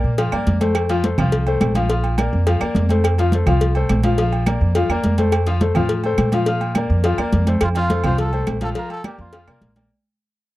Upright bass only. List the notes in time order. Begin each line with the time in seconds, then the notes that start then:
0.04 A#2
0.33 G2
0.47 F2
1.18 C2
1.61 A#1
2.33 F2
2.61 E2
2.75 F2
3.46 C2
3.89 A#1
4.61 F2
4.89 E2
5.04 F2
5.75 A2
6.18 A#2
6.90 F2
7.18 E2
7.33 F2
7.61 F2
8.04 C2
8.48 A#1
9.18 F2
9.47 C2
9.61 A#1